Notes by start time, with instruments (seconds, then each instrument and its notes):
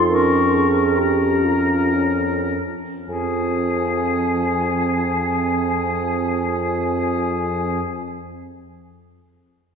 Already playing: bassoon F2, flute C6
0.10 clarinet C#4, french horn A#4, oboe A#4, flute C#6
0.53 french horn G#4
0.97 clarinet C#4, french horn G4, oboe A#4, flute A#5
1.45 french horn F4
1.95 french horn C#4
3.08 bassoon F2, french horn F3, clarinet C4, oboe G#4, flute G#5